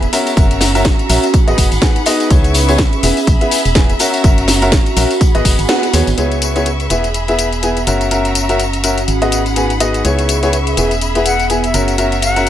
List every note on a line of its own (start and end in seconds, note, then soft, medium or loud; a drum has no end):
0.00 0.13 B3 medium
0.00 0.12 G#4 medium
0.00 0.61 G#4 medium
0.00 0.11 E5 medium
0.00 1.34 E5 medium
0.00 0.12 B5 medium
0.00 0.13 B5 loud
0.00 closed hi-hat soft
0.00 tambourine soft
0.13 0.32 C#4 medium
0.13 1.74 C#4 medium
0.13 0.32 F#4 medium
0.13 1.33 F#4 medium
0.13 0.33 A#4 medium
0.13 0.32 E5 loud
0.13 1.33 E5 medium
0.13 1.33 A#5 medium
0.13 open hi-hat loud
0.13 tambourine medium
0.27 closed hi-hat soft
0.27 tambourine medium
0.27 tambourine soft
0.35 0.92 F#1 loud
0.35 0.72 C#4 medium
0.35 1.74 F#4 medium
0.35 0.72 F#4 medium
0.35 0.72 A#4 medium
0.35 0.72 E5 medium
0.35 kick loud
0.35 closed hi-hat medium
0.35 tambourine soft
0.51 closed hi-hat soft
0.51 tambourine soft
0.61 snare medium
0.61 open hi-hat loud
0.61 tambourine medium
0.68 1.34 A#5 medium
0.75 0.85 C#4 loud
0.75 0.85 F#4 medium
0.75 0.85 A#4 medium
0.75 0.85 E5 loud
0.75 closed hi-hat soft
0.75 tambourine medium
0.75 tambourine soft
0.84 kick loud
0.84 snare loud
0.84 closed hi-hat medium
0.84 tambourine soft
0.99 closed hi-hat soft
0.99 tambourine soft
1.09 1.19 A#1 medium
1.09 1.23 C#4 medium
1.09 1.23 F#4 medium
1.09 1.23 A#4 medium
1.09 1.23 E5 medium
1.09 open hi-hat loud
1.09 tambourine medium
1.23 closed hi-hat soft
1.23 tambourine soft
1.33 2.31 D#4 medium
1.33 2.30 G#4 medium
1.33 2.30 F#5 medium
1.33 2.30 B5 medium
1.33 kick loud
1.33 closed hi-hat medium
1.33 tambourine soft
1.47 1.54 G#1 medium
1.47 1.66 B3 medium
1.47 1.66 F#4 medium
1.47 1.66 G#4 medium
1.47 1.66 D#5 loud
1.47 closed hi-hat soft
1.47 tambourine soft
1.58 1.67 F#1 medium
1.58 kick medium
1.58 open hi-hat loud
1.58 tambourine medium
1.65 4.48 G#4 medium
1.71 1.79 G#1 medium
1.71 closed hi-hat soft
1.71 tambourine medium
1.71 tambourine soft
1.78 1.96 B3 medium
1.78 2.60 F#5 medium
1.78 1.96 G#5 medium
1.78 4.00 B5 medium
1.78 snare loud
1.82 1.96 F#4 medium
1.82 1.96 G#4 medium
1.82 kick loud
1.82 closed hi-hat medium
1.82 tambourine soft
1.96 closed hi-hat soft
1.96 tambourine soft
2.06 2.26 B3 medium
2.06 2.26 F#4 medium
2.06 2.26 G#4 medium
2.06 2.26 D#5 loud
2.06 open hi-hat loud
2.06 tambourine loud
2.06 tambourine medium
2.20 closed hi-hat soft
2.20 tambourine soft
2.30 2.85 C#2 loud
2.30 2.65 B3 medium
2.30 3.43 C#4 medium
2.30 2.65 E4 medium
2.30 2.65 G#4 medium
2.30 3.02 B4 medium
2.30 2.65 C#5 medium
2.30 5.18 E5 medium
2.30 3.02 C#6 medium
2.30 kick loud
2.30 closed hi-hat medium
2.30 tambourine soft
2.44 closed hi-hat soft
2.44 tambourine soft
2.51 5.21 E5 medium
2.51 open hi-hat loud
2.51 tambourine medium
2.69 2.79 B3 loud
2.69 2.79 E4 medium
2.69 2.79 G#4 medium
2.69 2.79 C#5 loud
2.69 closed hi-hat soft
2.69 tambourine medium
2.69 tambourine soft
2.78 kick loud
2.78 snare loud
2.78 closed hi-hat medium
2.78 tambourine soft
2.93 closed hi-hat soft
2.93 tambourine soft
3.03 3.12 E1 medium
3.03 3.17 B3 medium
3.03 4.00 B3 medium
3.03 3.17 E4 medium
3.03 3.17 G#4 medium
3.03 3.99 G#4 medium
3.03 3.17 E5 medium
3.03 3.99 B5 medium
3.03 open hi-hat loud
3.03 tambourine medium
3.17 closed hi-hat soft
3.17 tambourine soft
3.27 3.36 B1 medium
3.27 kick loud
3.27 closed hi-hat medium
3.27 tambourine soft
3.41 3.59 B3 medium
3.41 3.59 E4 medium
3.41 3.59 G#4 medium
3.41 3.59 E5 loud
3.41 closed hi-hat soft
3.41 tambourine soft
3.51 open hi-hat loud
3.51 tambourine medium
3.51 tambourine loud
3.65 3.94 E1 medium
3.65 closed hi-hat soft
3.65 tambourine medium
3.65 tambourine soft
3.75 3.89 B3 medium
3.75 3.89 E4 medium
3.75 3.89 G#4 medium
3.75 3.89 G#5 medium
3.75 kick loud
3.75 snare loud
3.75 closed hi-hat medium
3.75 tambourine soft
3.90 closed hi-hat soft
3.90 tambourine soft
3.99 4.20 C#4 medium
3.99 5.61 C#4 medium
3.99 4.20 F#4 medium
3.99 5.20 F#4 medium
3.99 4.20 A#4 medium
3.99 4.20 E5 loud
3.99 5.20 A#5 medium
3.99 open hi-hat loud
3.99 tambourine medium
4.11 6.47 F#4 loud
4.11 closed hi-hat soft
4.11 tambourine medium
4.11 tambourine soft
4.24 4.79 F#1 loud
4.24 4.59 C#4 medium
4.24 4.59 F#4 medium
4.24 4.59 A#4 medium
4.24 4.59 E5 medium
4.24 kick loud
4.24 closed hi-hat medium
4.24 tambourine soft
4.38 closed hi-hat soft
4.38 tambourine soft
4.48 snare medium
4.48 open hi-hat loud
4.48 tambourine medium
4.62 4.72 C#4 loud
4.62 4.72 F#4 medium
4.62 4.72 A#4 medium
4.62 4.72 E5 loud
4.62 closed hi-hat soft
4.62 tambourine medium
4.62 tambourine soft
4.72 kick loud
4.72 snare loud
4.72 closed hi-hat medium
4.72 tambourine soft
4.86 closed hi-hat soft
4.86 tambourine soft
4.96 5.06 A#1 medium
4.96 5.10 C#4 medium
4.96 5.10 F#4 medium
4.96 5.10 A#4 medium
4.96 5.10 E5 medium
4.96 open hi-hat loud
4.96 tambourine medium
5.11 closed hi-hat soft
5.11 tambourine soft
5.11 tambourine medium
5.21 6.47 B3 medium
5.21 6.17 G#4 medium
5.21 6.17 F#5 medium
5.21 6.17 B5 medium
5.21 kick loud
5.21 closed hi-hat medium
5.21 tambourine soft
5.35 5.42 G#1 medium
5.35 5.53 B3 medium
5.35 5.53 F#4 medium
5.35 5.53 G#4 medium
5.35 5.53 D#5 loud
5.35 closed hi-hat soft
5.35 tambourine soft
5.45 5.54 F#1 medium
5.45 kick medium
5.45 open hi-hat loud
5.45 tambourine loud
5.45 tambourine medium
5.59 5.66 G#1 loud
5.59 closed hi-hat soft
5.59 tambourine soft
5.59 tambourine medium
5.65 6.18 D#5 medium
5.65 6.47 G#5 medium
5.65 snare loud
5.69 5.83 B3 loud
5.69 5.83 F#4 medium
5.69 5.83 G#4 medium
5.69 5.83 F#5 loud
5.69 closed hi-hat medium
5.69 tambourine soft
5.83 closed hi-hat soft
5.83 tambourine soft
5.93 6.03 D#2 loud
5.93 6.07 B3 medium
5.93 6.07 F#4 medium
5.93 6.07 G#4 medium
5.93 6.07 C#5 loud
5.93 open hi-hat loud
5.93 tambourine medium
6.07 6.14 G#1 medium
6.07 closed hi-hat soft
6.07 tambourine soft
6.18 6.88 C#2 medium
6.18 6.52 B3 medium
6.18 7.30 C#4 medium
6.18 6.52 E4 medium
6.18 6.52 G#4 medium
6.18 6.90 B4 medium
6.18 6.52 C#5 medium
6.18 7.85 E5 medium
6.18 6.89 C#6 medium
6.18 closed hi-hat medium
6.18 tambourine soft
6.26 8.35 G#4 medium
6.32 closed hi-hat soft
6.32 tambourine soft
6.42 closed hi-hat medium
6.42 tambourine medium
6.52 6.66 E4 medium
6.52 9.08 E5 medium
6.52 7.87 B5 medium
6.56 6.66 B3 medium
6.56 6.66 G#4 medium
6.56 6.66 C#5 loud
6.56 closed hi-hat soft
6.56 tambourine soft
6.66 closed hi-hat medium
6.66 tambourine soft
6.80 closed hi-hat soft
6.80 tambourine soft
6.90 7.85 E1 medium
6.90 7.04 B3 medium
6.90 7.87 B3 medium
6.90 7.04 E4 medium
6.90 7.86 G#4 medium
6.90 7.04 G#4 medium
6.90 7.04 E5 medium
6.90 7.86 B5 medium
6.90 closed hi-hat loud
6.90 tambourine medium
7.04 closed hi-hat soft
7.04 tambourine soft
7.14 closed hi-hat medium
7.14 tambourine soft
7.28 7.47 B3 medium
7.28 7.47 E4 medium
7.28 7.47 G#4 medium
7.28 7.47 E5 medium
7.28 closed hi-hat soft
7.28 tambourine soft
7.39 closed hi-hat medium
7.39 tambourine medium
7.52 closed hi-hat soft
7.52 tambourine soft
7.63 7.76 B3 medium
7.63 7.76 E4 medium
7.63 7.76 G#4 medium
7.63 7.76 G#5 medium
7.63 closed hi-hat medium
7.63 tambourine soft
7.77 closed hi-hat soft
7.77 tambourine soft
7.87 9.06 F#1 medium
7.87 8.07 C#4 medium
7.87 9.48 C#4 medium
7.87 9.07 F#4 medium
7.87 8.07 F#4 medium
7.87 8.07 A#4 medium
7.87 8.07 E5 loud
7.87 9.07 E5 medium
7.87 9.07 A#5 medium
7.87 closed hi-hat medium
7.87 tambourine medium
8.01 closed hi-hat soft
8.01 tambourine soft
8.11 8.46 C#4 medium
8.11 8.46 F#4 medium
8.11 8.46 A#4 medium
8.11 8.46 E5 medium
8.11 closed hi-hat medium
8.11 tambourine soft
8.18 9.48 F#4 medium
8.25 closed hi-hat soft
8.25 tambourine soft
8.35 closed hi-hat medium
8.35 tambourine medium
8.42 9.08 A#5 medium
8.49 8.59 C#4 medium
8.49 8.59 F#4 medium
8.49 8.59 A#4 medium
8.49 8.59 E5 loud
8.49 closed hi-hat soft
8.49 tambourine soft
8.60 closed hi-hat medium
8.60 tambourine soft
8.73 closed hi-hat soft
8.73 tambourine soft
8.84 8.97 C#4 medium
8.84 8.97 F#4 medium
8.84 8.97 A#4 medium
8.84 8.97 E5 medium
8.84 closed hi-hat medium
8.84 tambourine medium
8.98 closed hi-hat soft
8.98 tambourine soft
9.08 10.03 G#1 medium
9.08 10.05 D#4 medium
9.08 10.04 G#4 medium
9.08 10.04 F#5 medium
9.08 10.04 B5 medium
9.08 closed hi-hat medium
9.08 tambourine soft
9.22 9.40 B3 medium
9.22 9.40 F#4 medium
9.22 9.40 G#4 medium
9.22 9.40 D#5 medium
9.22 closed hi-hat soft
9.22 tambourine soft
9.32 closed hi-hat medium
9.32 tambourine medium
9.46 10.34 F#5 medium
9.46 closed hi-hat soft
9.46 tambourine soft
9.52 12.22 G#4 loud
9.52 11.74 B5 medium
9.56 9.70 B3 medium
9.56 9.70 F#4 medium
9.56 9.70 G#4 medium
9.56 9.70 G#5 medium
9.56 closed hi-hat medium
9.56 tambourine soft
9.70 closed hi-hat soft
9.70 tambourine soft
9.80 10.00 B3 medium
9.80 10.00 F#4 medium
9.80 10.00 G#4 medium
9.80 10.00 D#5 medium
9.80 closed hi-hat medium
9.80 tambourine medium
9.94 closed hi-hat soft
9.94 tambourine soft
10.05 10.75 C#2 medium
10.05 10.39 B3 medium
10.05 11.17 C#4 medium
10.05 10.39 E4 medium
10.05 10.39 G#4 medium
10.05 10.77 B4 medium
10.05 10.39 C#5 medium
10.05 11.72 E5 medium
10.05 10.77 C#6 medium
10.05 closed hi-hat medium
10.05 tambourine soft
10.19 closed hi-hat soft
10.19 tambourine soft
10.29 closed hi-hat medium
10.29 tambourine medium
10.39 12.49 E5 medium
10.43 10.53 B3 medium
10.43 10.53 E4 medium
10.43 10.53 G#4 medium
10.43 10.53 C#5 loud
10.43 closed hi-hat soft
10.43 tambourine soft
10.53 closed hi-hat medium
10.53 tambourine soft
10.67 closed hi-hat soft
10.67 tambourine soft
10.77 11.72 E1 medium
10.77 11.74 B3 medium
10.77 10.91 B3 medium
10.77 10.91 E4 medium
10.77 10.91 G#4 medium
10.77 11.73 G#4 medium
10.77 10.91 E5 medium
10.77 11.73 B5 medium
10.77 closed hi-hat medium
10.77 tambourine medium
10.91 closed hi-hat soft
10.91 tambourine soft
11.01 closed hi-hat medium
11.01 tambourine soft
11.15 11.34 B3 medium
11.15 11.34 E4 medium
11.15 11.34 G#4 medium
11.15 11.34 E5 loud
11.15 closed hi-hat soft
11.15 tambourine soft
11.26 11.46 F#5 medium
11.26 closed hi-hat medium
11.26 tambourine medium
11.40 closed hi-hat soft
11.40 tambourine soft
11.50 11.63 B3 medium
11.50 11.63 E4 medium
11.50 11.63 G#4 medium
11.50 11.63 G#5 medium
11.50 closed hi-hat medium
11.50 tambourine soft
11.64 11.80 E5 medium
11.64 closed hi-hat soft
11.64 tambourine soft
11.74 12.49 F#1 medium
11.74 11.94 C#4 medium
11.74 12.49 C#4 medium
11.74 11.94 F#4 medium
11.74 12.49 F#4 medium
11.74 11.94 A#4 medium
11.74 11.94 E5 loud
11.74 12.49 E5 medium
11.74 12.49 A#5 medium
11.74 closed hi-hat medium
11.74 tambourine medium
11.88 closed hi-hat soft
11.88 tambourine soft
11.98 12.33 C#4 medium
11.98 12.33 F#4 medium
11.98 12.33 A#4 medium
11.98 12.33 E5 medium
11.98 closed hi-hat medium
11.98 tambourine soft
12.12 closed hi-hat soft
12.12 tambourine soft
12.22 12.49 F#5 medium
12.22 closed hi-hat medium
12.22 tambourine medium
12.29 12.49 F#4 medium
12.36 12.46 C#4 loud
12.36 12.46 F#4 medium
12.36 12.46 A#4 medium
12.36 12.46 E5 loud
12.36 closed hi-hat soft
12.36 tambourine soft